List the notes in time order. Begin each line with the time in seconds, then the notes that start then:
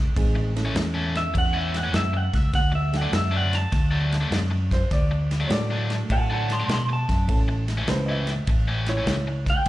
Already playing: A5
0.15 A1 D#3 G#3 C4 D#4 G#4, kick, ride
0.35 muted overdriven electric guitar stroke
0.55 E3 A3 C#4 E4 A4, snare, ride
0.65 A2 E3 A3 C#4
0.75 E2, muted overdriven electric guitar stroke, snare, ride
0.94 A2 E3 A3 C#4
1.15 E5, snare, ride
1.34 E2, muted overdriven electric guitar stroke, kick, ride
1.38 F#5
1.53 A2 E3 A3 C#4 E5
1.74 F#5, snare, ride
1.83 A2 E3 A3 C#4
1.93 F#2 E5, snare, ride
2.13 F#5, muted overdriven electric guitar stroke
2.33 C#2 E5, kick, snare, ride
2.53 D2 F#5, kick, snare, ride
2.72 E5, muted overdriven electric guitar stroke
2.93 F#3 A3 D4 F#4 A4 F#5, snare, ride
3.02 D3 F#3 A3 D4
3.12 F#2 E5, muted overdriven electric guitar stroke, snare, ride
3.31 D3 F#3 A3 D4
3.36 F#5
3.53 A5, snare, ride
3.72 D2, muted overdriven electric guitar stroke, kick, snare, ride
3.91 D3 F#3 A3 D4
4.12 snare, ride
4.21 D3 F#3 A3 D4
4.31 F#2, snare, ride
4.51 muted overdriven electric guitar stroke
4.71 C5, kick, snare, ride
4.91 D2 D5, kick, snare, ride
5.11 muted overdriven electric guitar stroke
5.31 snare, ride
5.40 D3 F#3 A3 D4
5.48 A2 F#3 A3 D4 F#4 A4 C#5, muted overdriven electric guitar stroke, snare, ride
5.52 D5
5.70 D3 F#3 A3 D4
5.90 snare, ride
6.10 A2 F#5 A5, muted overdriven electric guitar stroke, kick, ride
6.30 D3 F#3 A3 D4 F#5 A5
6.50 A5 C6, snare, ride
6.60 D3 F#3 A3 D4
6.68 B2 A5 C6, snare, ride
6.89 A5, muted overdriven electric guitar stroke
7.09 F#2, kick, snare, ride
7.28 A1 E3 A3 C#4 E4 A4, kick, ride
7.48 muted overdriven electric guitar stroke
7.68 snare, ride
7.78 A2 E3 A3 C#4
7.87 C#2 E3 A3 C#4 E4 B4 C5, muted overdriven electric guitar stroke, snare, ride
8.06 A2 E3 A3 C#4 D#5
8.10 E5
8.27 snare, ride
8.47 A1, muted overdriven electric guitar stroke, kick, ride
8.68 A2 E3 A3 C#4
8.86 E4 C#5, snare, ride
8.97 A2 E3 A3 C#4
9.06 C#2, snare, ride
9.28 muted overdriven electric guitar stroke
9.46 G5, kick, snare, ride
9.66 ride